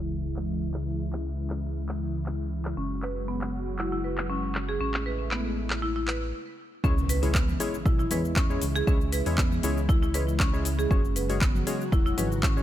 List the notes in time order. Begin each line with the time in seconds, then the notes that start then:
Already playing: C#2 C#3 E3 G#3 E4, sub drop
0.36 clap
0.74 clap
1.13 clap
1.50 clap
1.89 clap
2.26 clap
2.65 clap
2.77 F#1 F#3 G#3 C#4 F#4
3.02 B4, clap
3.28 B3
3.41 clap
3.79 E4, clap
3.92 E4
4.04 B4
4.18 clap
4.30 C#4
4.55 clap
4.69 G#4
4.80 A1 G#3 A3 C#4 E4
4.94 clap
5.06 B4
5.31 B3, clap
5.70 clap
5.82 E4
5.96 E4
6.08 B4, clap
6.84 C#2 C#3 E3 G#3 C#4 E4 G#4 C#5, kick, impact, shaker
6.98 shaker
7.09 B4, open hi-hat, shaker
7.23 G#3 C#4 E4 G#4 C#5, open hi-hat, shaker
7.35 B3, kick, clap, shaker
7.48 mid tom, shaker
7.60 G#3 C#4 E4 G#4 C#5, open hi-hat, shaker
7.74 shaker
7.86 B1 E4, kick, shaker
7.99 E4, shaker
8.11 E2 G#3 C#4 E4 G#4 B4 C#5, open hi-hat, mid tom, shaker
8.25 shaker
8.36 C#4, kick, clap, shaker
8.50 G#3 C#4 E4 G#4 C#5, shaker
8.62 C#2, open hi-hat, shaker
8.76 G#4, shaker
8.87 C#2 G#3 C#4 E4 G#4 C#5, kick, shaker
9.01 shaker
9.12 B4, open hi-hat, shaker
9.26 E2 G#3 C#4 E4 G#4 C#5, open hi-hat, shaker
9.38 B3, kick, clap, shaker
9.51 mid tom, shaker
9.63 C#2 G#3 C#4 E4 G#4 C#5, open hi-hat, shaker
9.78 shaker
9.89 E4, kick, shaker
10.02 E4, shaker
10.14 G#3 C#4 E4 G#4 B4 C#5, open hi-hat, shaker
10.28 shaker
10.40 C#4, kick, clap, shaker
10.53 G#3 C#4 E4 G#4 C#5, shaker
10.65 open hi-hat, shaker
10.79 G#4, shaker
10.90 F#1 F#3 G#3 C#4 F#4 G#4 C#5, kick, shaker
11.05 shaker
11.16 B4, open hi-hat, shaker
11.30 G#3 C#4 F#4 G#4 C#5, open hi-hat, shaker
11.41 B3, kick, clap, shaker
11.55 mid tom, shaker
11.67 G#3 C#4 F#4 G#4 C#5, open hi-hat, shaker
11.81 shaker
11.92 E1 E4, kick, shaker
12.06 E4, shaker
12.18 G#1 G#3 C#4 F#4 G#4 B4 C#5, open hi-hat, mid tom, shaker
12.32 shaker
12.43 C#4, kick, clap, shaker
12.57 G#3 C#4 F#4 G#4 C#5, shaker